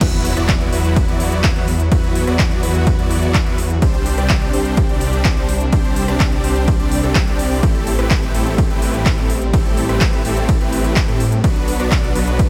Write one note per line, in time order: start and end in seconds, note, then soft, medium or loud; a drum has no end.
0.01 0.34 E2 loud
0.01 0.34 F#3 medium
0.01 3.78 F#3 medium
0.01 0.34 B3 medium
0.01 3.78 B3 medium
0.01 1.90 E4 medium
0.01 0.34 E4 medium
0.01 0.34 F#4 medium
0.01 0.34 B4 loud
0.01 kick loud
0.01 closed hi-hat medium
0.01 crash loud
0.01 ride medium
0.01 impact medium
0.13 closed hi-hat soft
0.25 open hi-hat loud
0.37 0.70 E2 loud
0.37 0.70 F#3 loud
0.37 0.70 B3 medium
0.37 0.70 E4 medium
0.37 0.70 F#4 medium
0.37 0.70 D5 loud
0.37 cross-stick medium
0.37 closed hi-hat medium
0.49 kick loud
0.49 clap loud
0.49 closed hi-hat medium
0.49 ride medium
0.61 closed hi-hat soft
0.73 1.06 E2 loud
0.73 1.05 F#3 medium
0.73 1.05 B3 medium
0.73 1.05 E4 medium
0.73 1.05 F#4 medium
0.73 1.05 B4 loud
0.73 open hi-hat loud
0.84 closed hi-hat medium
0.96 kick loud
0.96 closed hi-hat medium
0.96 ride medium
1.08 1.54 E2 loud
1.08 1.53 F#3 loud
1.08 1.53 B3 medium
1.08 1.53 E4 medium
1.08 1.53 F#4 medium
1.08 1.53 D5 loud
1.08 closed hi-hat soft
1.20 open hi-hat loud
1.32 closed hi-hat medium
1.44 kick loud
1.44 clap loud
1.44 closed hi-hat medium
1.44 ride medium
1.56 1.89 E2 loud
1.56 1.68 F#3 medium
1.56 1.68 B3 medium
1.56 1.68 E4 medium
1.56 1.68 F#4 medium
1.56 1.68 B4 medium
1.56 closed hi-hat soft
1.68 open hi-hat loud
1.80 closed hi-hat medium
1.92 2.25 E2 loud
1.92 2.24 F#3 medium
1.92 2.24 B3 medium
1.92 2.24 E4 medium
1.92 2.24 F#4 medium
1.92 3.80 F#4 medium
1.92 2.24 B4 loud
1.92 kick loud
1.92 closed hi-hat medium
1.92 ride medium
2.04 closed hi-hat soft
2.15 open hi-hat loud
2.27 2.61 E2 loud
2.27 2.60 F#3 loud
2.27 2.60 B3 medium
2.27 2.60 E4 medium
2.27 2.60 F#4 medium
2.27 2.60 D5 loud
2.27 cross-stick medium
2.27 closed hi-hat medium
2.39 kick loud
2.39 clap loud
2.39 closed hi-hat medium
2.39 ride medium
2.51 closed hi-hat soft
2.63 2.96 E2 loud
2.63 2.96 F#3 medium
2.63 2.96 B3 medium
2.63 2.96 E4 medium
2.63 2.96 F#4 medium
2.63 2.96 B4 medium
2.63 open hi-hat loud
2.75 closed hi-hat medium
2.87 kick loud
2.87 closed hi-hat medium
2.87 ride medium
2.99 3.44 E2 loud
2.99 3.43 F#3 medium
2.99 3.44 B3 medium
2.99 3.44 E4 medium
2.99 3.44 F#4 medium
2.99 3.44 D5 loud
2.99 closed hi-hat soft
3.11 open hi-hat loud
3.23 closed hi-hat medium
3.34 kick loud
3.34 clap loud
3.34 closed hi-hat medium
3.34 ride medium
3.46 3.80 E2 loud
3.46 3.59 F#3 medium
3.46 3.59 B3 medium
3.46 3.59 E4 medium
3.46 3.59 F#4 medium
3.46 3.59 B4 medium
3.46 closed hi-hat soft
3.58 open hi-hat loud
3.70 closed hi-hat medium
3.82 4.15 C2 loud
3.82 4.15 G3 medium
3.82 7.59 G3 medium
3.82 4.15 C4 medium
3.82 7.59 C4 medium
3.82 4.15 D4 medium
3.82 7.59 D4 medium
3.82 4.15 G4 medium
3.82 4.15 C5 loud
3.82 kick loud
3.82 closed hi-hat medium
3.82 ride medium
3.94 closed hi-hat soft
4.06 open hi-hat loud
4.18 4.51 C2 loud
4.18 4.51 G3 loud
4.18 4.51 C4 medium
4.18 4.51 D4 medium
4.18 4.51 G4 medium
4.18 4.51 D5 loud
4.18 cross-stick medium
4.18 closed hi-hat medium
4.29 kick loud
4.29 clap loud
4.29 closed hi-hat medium
4.29 ride medium
4.42 closed hi-hat soft
4.53 4.87 C2 loud
4.53 4.86 G3 medium
4.53 4.86 C4 medium
4.53 4.86 D4 medium
4.53 4.86 G4 medium
4.53 4.86 C5 medium
4.53 open hi-hat loud
4.65 closed hi-hat medium
4.77 kick loud
4.77 closed hi-hat medium
4.77 ride medium
4.89 5.34 C2 loud
4.89 5.34 G3 medium
4.89 5.34 C4 medium
4.89 5.34 D4 medium
4.89 5.34 G4 medium
4.89 5.34 D5 loud
4.89 closed hi-hat soft
5.01 open hi-hat loud
5.13 closed hi-hat medium
5.25 kick loud
5.25 clap loud
5.25 closed hi-hat medium
5.25 ride medium
5.37 5.70 C2 loud
5.37 5.49 G3 medium
5.37 5.49 C4 medium
5.37 5.49 D4 medium
5.37 5.49 G4 medium
5.37 5.49 C5 medium
5.37 closed hi-hat soft
5.49 open hi-hat loud
5.61 closed hi-hat medium
5.72 6.06 C2 loud
5.72 6.05 G3 medium
5.72 6.05 C4 medium
5.72 6.05 D4 medium
5.72 6.05 G4 medium
5.72 6.05 C5 loud
5.72 kick loud
5.72 closed hi-hat medium
5.72 ride medium
5.84 closed hi-hat soft
5.96 open hi-hat loud
6.08 6.42 C2 loud
6.08 6.41 G3 loud
6.08 6.41 C4 medium
6.08 6.41 D4 medium
6.08 6.41 G4 medium
6.08 6.41 D5 loud
6.08 cross-stick medium
6.08 closed hi-hat medium
6.20 kick loud
6.20 clap loud
6.20 closed hi-hat soft
6.20 ride medium
6.32 closed hi-hat soft
6.44 6.77 C2 loud
6.44 6.77 G3 medium
6.44 6.77 C4 medium
6.44 6.77 D4 medium
6.44 6.77 G4 medium
6.44 6.77 C5 loud
6.44 open hi-hat loud
6.56 closed hi-hat medium
6.68 kick loud
6.68 closed hi-hat soft
6.68 ride medium
6.80 7.01 C2 loud
6.80 7.01 G3 medium
6.80 7.01 C4 medium
6.80 7.01 D4 medium
6.80 7.01 G4 medium
6.80 7.01 D5 loud
6.80 closed hi-hat soft
6.92 open hi-hat loud
7.03 7.25 C2 loud
7.03 7.24 G3 loud
7.03 7.24 C4 medium
7.03 7.24 D4 medium
7.03 7.24 G4 medium
7.03 7.24 A4 loud
7.03 closed hi-hat medium
7.15 kick loud
7.15 clap loud
7.15 closed hi-hat medium
7.15 ride medium
7.27 7.61 C2 medium
7.27 7.60 G3 loud
7.27 7.60 C4 medium
7.27 7.60 D4 medium
7.27 7.60 G4 medium
7.27 7.60 D5 loud
7.27 closed hi-hat soft
7.39 open hi-hat loud
7.51 open hi-hat medium
7.63 7.96 A1 loud
7.63 11.40 G3 medium
7.63 7.96 A3 medium
7.63 11.40 A3 medium
7.63 7.96 C4 medium
7.63 11.40 C4 medium
7.63 7.96 E4 medium
7.63 7.96 G4 medium
7.63 7.96 A4 loud
7.63 kick loud
7.63 ride medium
7.75 closed hi-hat soft
7.87 open hi-hat loud
7.99 8.32 A1 loud
7.99 8.32 A3 loud
7.99 8.32 C4 medium
7.99 8.32 E4 medium
7.99 8.32 G4 medium
7.99 8.32 B4 loud
7.99 cross-stick medium
7.99 closed hi-hat medium
8.11 kick loud
8.11 clap loud
8.11 closed hi-hat medium
8.11 ride medium
8.23 closed hi-hat soft
8.34 8.68 A1 loud
8.34 8.67 A3 medium
8.34 8.67 C4 medium
8.34 8.67 E4 medium
8.34 8.67 G4 medium
8.34 8.67 A4 medium
8.34 open hi-hat loud
8.46 closed hi-hat medium
8.58 kick loud
8.58 closed hi-hat soft
8.58 ride medium
8.70 9.15 A1 loud
8.70 9.15 A3 medium
8.70 9.15 C4 medium
8.70 9.15 E4 medium
8.70 9.15 G4 medium
8.70 9.15 B4 loud
8.70 closed hi-hat soft
8.82 open hi-hat loud
8.94 closed hi-hat medium
9.06 kick loud
9.06 clap loud
9.06 closed hi-hat medium
9.06 ride medium
9.18 9.51 A1 loud
9.18 9.30 A3 medium
9.18 9.30 C4 medium
9.18 9.30 E4 medium
9.18 9.30 G4 medium
9.18 9.30 A4 medium
9.18 closed hi-hat soft
9.30 open hi-hat loud
9.42 closed hi-hat medium
9.54 9.87 A1 loud
9.54 9.86 A3 medium
9.54 9.86 C4 medium
9.54 9.86 E4 medium
9.54 9.86 G4 medium
9.54 9.86 A4 loud
9.54 kick loud
9.54 closed hi-hat medium
9.54 ride medium
9.65 closed hi-hat soft
9.77 open hi-hat loud
9.89 10.23 A1 loud
9.89 10.22 A3 loud
9.89 10.22 C4 medium
9.89 10.22 E4 medium
9.89 10.22 G4 medium
9.89 10.22 B4 loud
9.89 cross-stick medium
9.89 closed hi-hat medium
10.01 kick loud
10.01 clap loud
10.01 closed hi-hat medium
10.01 ride medium
10.13 closed hi-hat soft
10.25 10.58 A1 loud
10.25 10.58 A3 medium
10.25 10.58 C4 medium
10.25 10.58 E4 medium
10.25 10.58 G4 medium
10.25 10.58 A4 medium
10.25 open hi-hat loud
10.37 closed hi-hat medium
10.49 kick loud
10.49 closed hi-hat medium
10.49 ride medium
10.61 11.06 A1 loud
10.61 11.05 A3 medium
10.61 11.05 C4 medium
10.61 11.05 E4 medium
10.61 11.05 G4 medium
10.61 11.05 B4 loud
10.61 closed hi-hat soft
10.73 open hi-hat loud
10.84 closed hi-hat medium
10.96 kick loud
10.96 clap loud
10.96 closed hi-hat medium
10.96 ride medium
11.08 11.42 A2 loud
11.08 11.20 A3 medium
11.08 11.20 C4 medium
11.08 11.20 E4 medium
11.08 11.20 G4 medium
11.08 11.20 A4 medium
11.08 closed hi-hat soft
11.20 open hi-hat loud
11.32 closed hi-hat medium
11.44 11.77 B1 loud
11.44 12.49 D3 medium
11.44 11.77 F#3 medium
11.44 12.49 F#3 medium
11.44 12.49 B3 medium
11.44 11.77 B3 medium
11.44 11.77 D4 medium
11.44 11.77 F#4 medium
11.44 11.77 B4 loud
11.44 kick loud
11.44 closed hi-hat medium
11.44 ride medium
11.56 closed hi-hat soft
11.68 open hi-hat loud
11.80 12.13 B1 loud
11.80 12.13 F#3 loud
11.80 12.13 B3 medium
11.80 12.13 D4 medium
11.80 12.13 F#4 medium
11.80 12.13 D5 loud
11.80 cross-stick medium
11.80 closed hi-hat medium
11.92 kick loud
11.92 clap loud
11.92 closed hi-hat medium
11.92 ride medium
12.04 closed hi-hat soft
12.15 12.49 B1 loud
12.15 12.48 F#3 medium
12.15 12.48 B3 medium
12.15 12.48 D4 medium
12.15 12.48 F#4 medium
12.15 12.48 B4 medium
12.15 open hi-hat loud
12.27 closed hi-hat medium
12.39 kick loud
12.39 closed hi-hat medium
12.39 ride medium